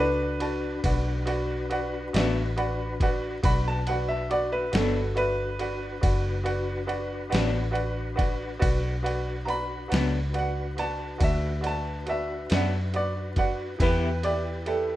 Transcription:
Already playing: C#2 D4 F#4 B4 D5 F#5
0.00 D4 B4
0.40 F#4 B4 D5 A5, ride
0.84 B1 F#4 B4 D5 F#5, kick, ride
1.26 F#4 B4 D5 F#5, ride
1.70 F#4 B4 D5 F#5, ride
2.13 A1 F#3 B3 D4 F#4 B4 D5 E5, snare, ride
2.18 B2
2.57 F#4 B4 D5 F#5 B5, ride
3.00 F#4 B4 D5 F#5, kick, ride
3.43 B1 D4 F#4 B4 D5 F#5 B5, kick, ride
3.68 A5
3.87 F#4 B4 D5 F#5, ride
4.08 E5
4.30 F#4 B4 D5 F#5, ride
4.53 B4
4.72 G1 F#3 B3 D4 F#4 A4 B4 D5 F#5, snare, ride
4.76 B2
5.15 F#4 B4 D5 E5, ride
5.59 F#4 B4 D5 F#5, ride
6.01 F#1 F#4 B4 D5 F#5, kick, ride
6.44 F#4 B4 D5 F#5, ride
6.87 F#4 B4 D5 F#5, ride
7.30 A1 B3 D4 F#4 B4 D5 F#5, ride
7.35 B2 F#3, snare
7.71 F#4 B4 D5 F#5
7.75 ride
8.16 F#4 B4 D5 F#5, kick, ride
8.59 B1 D4 F#4 B4 D5 F#5, kick, ride
9.03 F#4 B4 D5 F#5, ride
9.45 F#4 B4 D5 F#5 A#5, ride
9.50 B5
9.88 D4 F#4 B4 D5 F#5, ride
9.92 C#2 B2 F#3 B3, snare
10.34 F#4 B4 D5 F#5, ride
10.39 F#5
10.77 F#4 B4 D5 F#5 A5, ride
11.18 D2 F#4 B4 D5 F#5, kick, ride
11.24 E5
11.61 F#4 B4 D5 F#5, ride
11.67 A5
12.06 F#4 B4 D5 E5 F#5, ride
12.50 F#2 B2 F#3 B3 D4 F#4 B4 D5 F#5, snare, ride
12.94 F#4 B4 D5 F#5, ride
13.36 F#4 B4 D5 F#5, kick, ride
13.77 E2 E4 G4 B4, kick, ride
13.81 E3 B3 E4 G4 B4 E5 G5
14.23 G4 B4 D5 E5 G5, ride
14.66 G4 A4 B4 E5 G5, ride

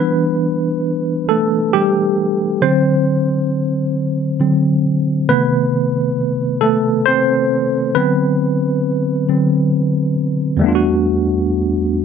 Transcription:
Already playing: E3 G3 B3 D4 B4
1.29 A3 A4
1.73 G3 G4
2.62 D3 F#3 C4 C5
4.40 D3 F#3 C4
5.29 C3 D#3 A3 B3 B4
6.61 A3 A4
7.06 C4 C5
7.95 D3 F#3 B3 C4 B4
9.28 D3 F#3 C4
10.57 E2 G3
10.61 A3 B3
10.66 D4 F4
10.75 F#4

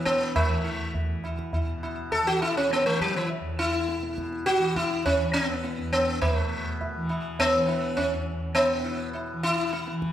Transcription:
Already playing: E2 B2 E3
0.05 B3, tabla ke
0.21 tabla te
0.36 A3, tabla na, tabla ge
0.44 E3
0.64 E4
0.94 tabla tin, tabla ge
1.03 E2
1.24 E4, tabla na
1.39 tabla ke
1.53 E4, tabla tin, tabla ge
1.62 B2
1.83 E4, tabla na
2.12 A4, tabla tin, tabla ge
2.22 E3
2.27 F#4
2.41 E4, tabla na
2.57 C#4
2.71 B3, tabla te
2.81 E3
2.85 A3, tabla te
3.01 F#3, tabla ke
3.15 E3, tabla te
3.30 tabla tin
3.41 E2
3.59 E4
3.88 tabla te
3.99 B2, tabla te
4.18 tabla ke
4.33 tabla te
4.46 F#4, tabla te
4.58 E3
4.62 tabla te
4.76 E4, tabla ke
4.91 tabla te
5.06 C#4, tabla na, tabla ge
5.18 E3
5.33 C4, tabla te
5.48 B3
5.63 E4, tabla te
5.77 E2, tabla te
5.93 B3, tabla ke
6.08 tabla te
6.22 A3, tabla na, tabla ge
6.36 B2
6.81 tabla tin, tabla ge
6.95 E3
7.09 E4, tabla na
7.39 B3, tabla tin, tabla ge
7.54 E3
7.68 E4, tabla na
7.97 C#4, tabla tin, tabla ge
8.14 E2
8.55 B3, tabla na
8.73 B2
8.84 E4
9.13 E4, tabla tin
9.33 E3
9.43 E4
9.73 E4, tabla te
9.87 E3, tabla te
10.02 tabla ke

